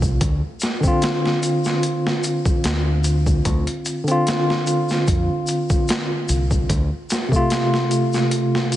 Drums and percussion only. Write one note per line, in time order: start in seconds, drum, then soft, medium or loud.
0.02 kick medium
0.02 shaker soft
0.21 kick loud
0.21 closed hi-hat medium
0.21 shaker soft
0.60 snare medium
0.60 closed hi-hat medium
0.60 shaker medium
0.83 kick medium
0.83 shaker soft
1.02 snare loud
1.02 closed hi-hat medium
1.02 shaker soft
1.26 snare soft
1.43 closed hi-hat medium
1.43 shaker medium
1.64 snare soft
1.64 shaker soft
1.83 closed hi-hat medium
1.83 shaker soft
2.07 snare medium
2.24 closed hi-hat medium
2.24 shaker medium
2.45 kick medium
2.45 shaker medium
2.64 snare loud
2.64 closed hi-hat medium
2.64 shaker soft
3.04 closed hi-hat medium
3.04 shaker medium
3.26 kick medium
3.26 shaker soft
3.45 kick loud
3.45 closed hi-hat medium
3.45 shaker soft
3.67 closed hi-hat soft
3.86 closed hi-hat medium
3.86 shaker medium
4.07 closed hi-hat soft
4.07 shaker soft
4.27 snare loud
4.27 closed hi-hat medium
4.27 shaker soft
4.50 snare soft
4.67 closed hi-hat medium
4.67 shaker medium
4.89 snare soft
4.89 shaker soft
5.07 kick loud
5.07 closed hi-hat medium
5.07 shaker soft
5.47 closed hi-hat medium
5.47 shaker medium
5.69 kick medium
5.69 shaker soft
5.88 snare loud
5.88 closed hi-hat medium
5.88 shaker soft
6.29 closed hi-hat medium
6.29 shaker medium
6.51 kick medium
6.51 shaker soft
6.70 kick medium
6.70 closed hi-hat medium
6.70 shaker soft
7.10 snare medium
7.10 closed hi-hat medium
7.10 shaker medium
7.32 kick medium
7.32 shaker soft
7.50 snare loud
7.50 closed hi-hat medium
7.50 shaker soft
7.74 snare soft
7.91 closed hi-hat medium
7.91 shaker medium
8.13 snare soft
8.13 shaker soft
8.31 closed hi-hat medium
8.31 shaker soft
8.55 snare medium
8.72 closed hi-hat medium
8.72 shaker medium